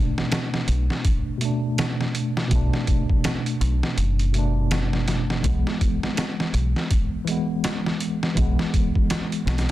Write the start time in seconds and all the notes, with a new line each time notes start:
Already playing: B2 A3 D4
0.18 snare
0.32 snare, closed hi-hat
0.54 snare
0.68 B1, closed hi-hat
0.90 snare
1.05 kick, closed hi-hat
1.38 B2 A3, closed hi-hat
1.45 D4
1.78 snare, closed hi-hat
2.01 snare
2.15 closed hi-hat
2.37 snare
2.48 B1 B2 A3, kick, closed hi-hat
2.55 D4
2.73 snare
2.87 kick, closed hi-hat
3.10 kick
3.24 snare, closed hi-hat
3.46 closed hi-hat
3.61 B1, closed hi-hat
3.83 snare
3.97 F#1, closed hi-hat
4.19 closed hi-hat
4.32 B2 A3, closed hi-hat
4.38 D4
4.71 snare, closed hi-hat
4.93 snare
5.08 snare, closed hi-hat
5.30 snare
5.42 B1 E3 G#3, kick, closed hi-hat
5.49 B3
5.67 snare
5.81 kick, closed hi-hat
6.03 snare
6.17 snare, closed hi-hat
6.40 snare
6.54 B1, closed hi-hat
6.76 snare
6.91 kick, closed hi-hat
7.25 E3 G#3, closed hi-hat
7.31 B3
7.64 snare, closed hi-hat
7.86 snare
8.00 closed hi-hat
8.23 snare
8.34 B1 E3 G#3, kick, closed hi-hat
8.41 B3
8.59 snare
8.74 kick, closed hi-hat
8.95 kick
9.10 snare, closed hi-hat
9.32 closed hi-hat
9.46 B1, snare, closed hi-hat
9.58 snare, closed hi-hat